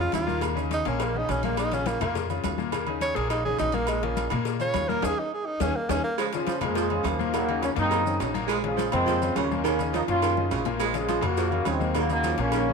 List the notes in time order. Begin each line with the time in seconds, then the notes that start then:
Already playing: C#3 C#4
0.00 F4
0.12 D#2 F4, cowbell, high conga, low timbale, low agogo, maracas
0.27 A#2 A#3 A#4, high conga, maracas
0.41 A#2 A#3 A#4, cowbell, low agogo, maracas
0.55 C#3 C#4 D#4, high conga, low agogo, maracas
0.71 D#4, cowbell, high conga, low timbale, low agogo, maracas
0.85 A#1 A#2 A#3 C#4 A#4, cowbell, high conga, maracas
1.00 A#3, cowbell, high conga, low agogo, maracas
1.14 C#3 C#4 D#4, high conga
1.29 A#1 C#3 C#4 D#4, cowbell, high conga, low timbale, low agogo, maracas
1.43 A#2 A#3 A#4, high conga, low agogo, maracas
1.57 D#4, cowbell, high conga, low agogo, maracas
1.72 C#3 C#4 F4, cowbell, high conga, maracas
1.86 A#3, cowbell, high conga, low timbale, low agogo, maracas
2.01 F2 A#2 A#3 A#4, cowbell, low conga, low agogo, maracas
2.15 cowbell, high conga, low conga, maracas
2.29 C#3 C#4 F4, high conga, low agogo, maracas
2.44 D#2, cowbell, high conga, low timbale, low agogo, maracas
2.58 A#2 A#3 A#4, high conga, maracas
2.72 A#2 A#3 A#4, cowbell, low agogo, maracas
2.86 C#3 C#4 D#4, high conga, low agogo
3.01 C#5, cowbell, high conga, low timbale, low agogo, maracas
3.15 A#1 A#2 A#3 G#4 A#4, cowbell, high conga, maracas
3.30 D#4, cowbell, high conga, low agogo, maracas
3.45 C#3 C#4 D#4 G#4, high conga
3.58 A#1 C#3 C#4 D#4, cowbell, high conga, low timbale, low agogo, maracas
3.72 A#2 A#3 A#4, high conga, low agogo, maracas
3.87 G#3, cowbell, high conga, low agogo, maracas
4.03 C#3 A#3 C#4 F4, cowbell, high conga
4.17 cowbell, high conga, low timbale, low agogo, maracas
4.30 A#2 A#3 A#4, cowbell, low conga, low agogo, maracas
4.45 cowbell, high conga, maracas
4.59 C#3 C#4 F4 C#5, high conga, low agogo, maracas
4.74 D#2, cowbell, high conga, low timbale, low agogo, maracas
4.88 A#2 A#3 A#4, high conga, maracas
5.02 D#2 A#3 C#4 D#4 G#4, cowbell, high conga, high timbale, maracas
5.19 D#4
5.34 G#4
5.46 D#4
5.60 D#2 A#3 C#4 D#4, cowbell, high conga, high timbale, maracas
5.76 A#3
5.89 D#2 A#3 C#4 D#4, cowbell, high conga, high timbale, maracas
6.04 A#3
6.18 C#3 F3 G#3, cowbell, high conga, low agogo, maracas
6.33 C#3 F3 C#4 F4, cowbell, high conga, maracas
6.47 F3, cowbell, high conga, low timbale, low agogo, maracas
6.61 F2 A#2 F3 G#3 A#3 A#4, cowbell, low conga, low agogo, maracas
6.75 F3, cowbell, high conga, maracas
6.90 C#3 C#4 F4, high conga, low agogo
7.03 D#2 C#3 F3 A#3, cowbell, high conga, low timbale, low agogo, maracas
7.19 A#2 A#3 A#4, high conga, maracas
7.33 A#2 D#3 F#3 A#3 A#4, cowbell, low agogo, maracas
7.49 C#3 C#4 D#4, high conga, low agogo
7.62 F3 A#3 C#4, cowbell, high conga, low timbale, low agogo, maracas
7.76 F#2 A#2 A#3 C4 D#4 A#4, cowbell, high conga, maracas
7.91 D#3, cowbell, high conga, low agogo, maracas
8.05 C#3 C#4 D#4, high conga, maracas
8.20 A#1 C#3 C#4 D#4, cowbell, high conga, low timbale, low agogo, maracas
8.34 A#2 A#3 A#4, high conga, low agogo, maracas
8.47 F3 G#3, cowbell, high conga, low agogo, maracas
8.64 C#3 F3 G#3 C#4 F4, cowbell, high conga
8.77 F3, cowbell, high conga, low timbale, low agogo, maracas
8.92 F2 A#2 G#3 A#3 C4 A#4, cowbell, low conga, low agogo, maracas
9.06 F3, cowbell, high conga, low conga, maracas
9.22 C#3 C#4 F4, high conga, low agogo, maracas
9.36 D#2 C#3 A#3 C#4, cowbell, high conga, low timbale, low agogo, maracas
9.51 A#2 A#3 A#4, high conga, maracas
9.64 A#2 D#3 A#3 C#4 A#4, cowbell, high conga, low agogo, maracas
9.79 C#3 C#4 D#4, high conga, low agogo, maracas
9.93 F3 A#3 D#4, cowbell, high conga, low timbale, low agogo, maracas
10.08 F#2 A#2 A#3 C#4 F4 A#4, cowbell, high conga, maracas
10.22 D#3, cowbell, high conga, low agogo, maracas
10.37 C#3 C#4 D#4, high conga
10.51 A#1 C#3 C#4 D#4, cowbell, low conga, low timbale, low agogo, maracas
10.65 A#2 A#3 A#4, low conga, low agogo, maracas
10.80 F3 G#3, cowbell, high conga, low agogo, maracas
10.94 C#3 F3 G#3 C#4 F4, cowbell, high conga, maracas
11.09 F3, cowbell, high conga, low timbale, low agogo, maracas
11.21 F2 A#2 A#3 F#4 A#4, cowbell, low conga, low agogo, maracas
11.37 F3, cowbell, high conga, maracas
11.51 C#3 C#4 F4, low agogo
11.65 D#2 C#3 G#3 C4, cowbell, high conga, low timbale, low agogo, maracas
11.80 A#2 A#3 A#4, high conga, maracas
11.95 A#2 D#3 F#3 A#3 A#4, cowbell, high conga, low agogo, maracas
12.09 C#3 F#3 A#3 C#4 D#4, high conga, low agogo, maracas
12.24 F3, cowbell, high conga, low timbale, low agogo, maracas
12.38 A#1 A#2 A#3 C#4 A#4, cowbell, high conga, maracas
12.52 D#3, cowbell, high conga, low agogo, maracas
12.67 C#3 C#4 D#4, high conga